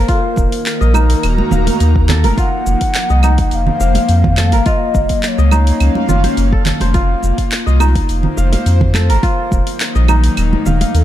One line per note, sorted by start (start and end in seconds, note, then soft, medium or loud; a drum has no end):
0.00 11.04 A#3 medium
0.00 0.28 D#4 medium
0.00 1.22 A#4 medium
0.00 1.01 C5 medium
0.00 0.38 F5 medium
0.08 2.37 D#3 medium
0.08 1.60 F4 loud
0.08 0.23 A4 loud
0.08 kick loud
0.08 open hi-hat soft
0.08 shaker soft
0.23 2.05 A#4 loud
0.36 0.47 D#1 loud
0.36 3.29 D#4 medium
0.36 kick loud
0.36 muted conga soft
0.36 high conga soft
0.36 shaker medium
0.52 open hi-hat medium
0.52 shaker soft
0.63 3.29 A#5 medium
0.63 clap medium
0.63 open hi-hat soft
0.63 shaker soft
0.81 1.15 A#1 medium
0.81 1.88 D#5 medium
0.81 shaker soft
0.94 2.56 D#4 medium
0.94 2.38 F#4 loud
0.94 muted conga medium
0.94 claves medium
0.94 shaker medium
1.10 open hi-hat medium
1.10 shaker soft
1.23 1.41 D#1 medium
1.23 open hi-hat soft
1.23 claves medium
1.23 shaker soft
1.38 high conga medium
1.51 1.70 D#1 loud
1.51 1.66 F5 medium
1.51 high conga medium
1.51 low conga loud
1.51 shaker medium
1.67 2.66 F5 medium
1.67 open hi-hat medium
1.67 high conga medium
1.67 shaker soft
1.80 2.25 D#2 medium
1.80 open hi-hat soft
1.80 shaker soft
1.96 kick loud
2.09 2.30 A4 medium
2.09 clap medium
2.09 low conga loud
2.09 shaker medium
2.24 2.32 D#1 loud
2.24 3.51 A#4 medium
2.24 open hi-hat medium
2.24 high conga medium
2.24 shaker soft
2.37 4.66 F3 medium
2.37 3.89 F4 loud
2.37 3.52 F#5 loud
2.37 kick loud
2.37 open hi-hat soft
2.37 shaker soft
2.66 2.75 F1 loud
2.66 muted conga soft
2.66 shaker medium
2.81 kick medium
2.81 open hi-hat medium
2.81 shaker soft
2.95 clap medium
2.95 open hi-hat soft
2.95 shaker medium
3.10 3.44 C2 medium
3.10 4.17 D#5 medium
3.10 shaker soft
3.23 4.86 D#4 medium
3.23 muted conga medium
3.23 claves medium
3.23 shaker medium
3.38 4.66 C5 medium
3.38 kick loud
3.38 open hi-hat medium
3.38 shaker soft
3.51 3.70 F1 medium
3.51 4.68 F5 loud
3.51 3.56 F#5 loud
3.51 open hi-hat soft
3.51 shaker medium
3.67 low conga medium
3.80 3.98 F1 loud
3.80 3.95 F5 medium
3.80 shaker medium
3.95 4.95 F5 medium
3.95 open hi-hat medium
3.95 muted conga medium
3.95 shaker soft
4.09 4.54 F2 medium
4.09 open hi-hat soft
4.09 shaker soft
4.24 kick loud
4.24 low conga loud
4.37 4.59 A4 medium
4.37 clap medium
4.37 high conga medium
4.37 claves medium
4.37 shaker medium
4.52 4.61 F1 medium
4.52 5.80 A#4 medium
4.52 open hi-hat medium
4.52 muted conga soft
4.52 shaker soft
4.66 6.94 F#3 medium
4.66 6.08 F4 loud
4.66 5.23 D#5 loud
4.66 kick loud
4.66 open hi-hat soft
4.66 shaker soft
4.95 5.04 F#1 loud
4.95 kick loud
4.95 muted conga soft
4.95 high conga soft
4.95 shaker medium
5.09 6.95 C#4 medium
5.09 kick medium
5.09 open hi-hat medium
5.09 shaker soft
5.20 5.29 D#5 medium
5.20 7.86 F5 medium
5.20 clap medium
5.20 open hi-hat soft
5.20 shaker soft
5.28 6.66 C#5 medium
5.38 5.72 C#2 medium
5.38 6.45 D#5 medium
5.38 shaker soft
5.51 7.14 D#4 medium
5.51 muted conga medium
5.51 claves medium
5.51 shaker medium
5.67 open hi-hat medium
5.67 shaker soft
5.80 5.90 C#2 medium
5.80 open hi-hat soft
5.80 claves medium
5.80 shaker soft
5.95 high conga medium
6.09 6.27 F#1 loud
6.09 6.94 F4 medium
6.09 high conga medium
6.09 low conga medium
6.09 shaker medium
6.24 6.81 C5 medium
6.24 open hi-hat medium
6.24 high conga medium
6.24 shaker soft
6.37 6.72 F#1 medium
6.37 open hi-hat soft
6.37 shaker soft
6.52 6.66 A4 medium
6.52 kick loud
6.66 7.98 A4 medium
6.66 clap medium
6.66 low conga loud
6.66 shaker medium
6.80 7.15 F1 medium
6.80 8.00 C5 medium
6.80 open hi-hat soft
6.80 high conga medium
6.80 shaker soft
6.94 8.46 F4 loud
6.94 9.23 F4 medium
6.94 kick loud
6.94 open hi-hat soft
6.94 shaker soft
7.23 7.32 F1 loud
7.23 muted conga soft
7.23 shaker medium
7.38 kick medium
7.38 open hi-hat medium
7.38 shaker soft
7.52 clap medium
7.52 open hi-hat soft
7.52 shaker soft
7.66 8.01 C2 medium
7.66 8.73 D#5 medium
7.66 shaker soft
7.80 9.42 D#4 medium
7.80 muted conga medium
7.80 claves medium
7.80 shaker medium
7.95 10.15 C5 medium
7.95 kick loud
7.95 open hi-hat medium
7.95 shaker soft
8.09 8.27 F1 medium
8.09 open hi-hat soft
8.09 shaker soft
8.23 low conga medium
8.37 8.56 F1 loud
8.37 8.52 F5 medium
8.37 shaker medium
8.52 9.52 F5 medium
8.52 open hi-hat medium
8.52 muted conga medium
8.52 shaker soft
8.66 9.11 F2 medium
8.66 open hi-hat soft
8.66 shaker soft
8.81 kick loud
8.81 low conga medium
8.94 9.15 A4 medium
8.94 clap medium
8.94 high conga medium
8.94 claves medium
8.94 shaker medium
9.09 9.18 F1 medium
9.09 10.37 A#4 medium
9.09 open hi-hat medium
9.09 muted conga soft
9.09 shaker soft
9.23 11.04 D#3 medium
9.23 10.74 F4 loud
9.23 kick loud
9.23 open hi-hat soft
9.23 shaker soft
9.42 11.04 F#3 medium
9.51 9.61 D#1 loud
9.51 11.04 D#4 medium
9.51 kick loud
9.51 muted conga soft
9.51 high conga soft
9.51 shaker medium
9.67 open hi-hat medium
9.67 shaker soft
9.80 clap medium
9.80 open hi-hat soft
9.80 shaker soft
9.95 10.29 A#1 medium
9.95 11.02 D#5 medium
9.95 shaker soft
10.08 11.04 D#4 medium
10.08 muted conga medium
10.08 claves medium
10.08 shaker medium
10.24 open hi-hat medium
10.24 shaker soft
10.37 10.56 D#1 medium
10.37 open hi-hat soft
10.37 claves medium
10.37 shaker soft
10.53 high conga medium
10.66 10.84 D#1 loud
10.66 10.80 F5 medium
10.66 high conga medium
10.66 low conga medium
10.66 shaker medium
10.81 11.04 F5 medium
10.81 open hi-hat medium
10.81 high conga medium
10.81 shaker soft
10.94 11.04 D#2 medium
10.94 11.04 A4 medium
10.94 10.99 A#4 medium
10.94 open hi-hat soft
10.94 shaker soft